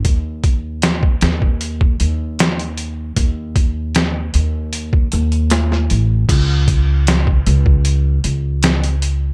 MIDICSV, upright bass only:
0, 0, Header, 1, 2, 480
1, 0, Start_track
1, 0, Tempo, 779221
1, 32, Time_signature, 4, 2, 24, 8
1, 5751, End_track
2, 0, Start_track
2, 0, Title_t, "Upright bass"
2, 0, Program_c, 0, 32
2, 31, Note_on_c, 0, 39, 84
2, 730, Note_off_c, 0, 39, 0
2, 753, Note_on_c, 0, 39, 93
2, 1211, Note_off_c, 0, 39, 0
2, 1235, Note_on_c, 0, 39, 81
2, 1932, Note_off_c, 0, 39, 0
2, 1953, Note_on_c, 0, 39, 88
2, 2650, Note_off_c, 0, 39, 0
2, 2679, Note_on_c, 0, 39, 89
2, 3133, Note_off_c, 0, 39, 0
2, 3162, Note_on_c, 0, 39, 93
2, 3615, Note_off_c, 0, 39, 0
2, 3641, Note_on_c, 0, 33, 87
2, 3849, Note_off_c, 0, 33, 0
2, 3877, Note_on_c, 0, 37, 93
2, 4572, Note_off_c, 0, 37, 0
2, 4600, Note_on_c, 0, 37, 94
2, 5054, Note_off_c, 0, 37, 0
2, 5078, Note_on_c, 0, 37, 76
2, 5751, Note_off_c, 0, 37, 0
2, 5751, End_track
0, 0, End_of_file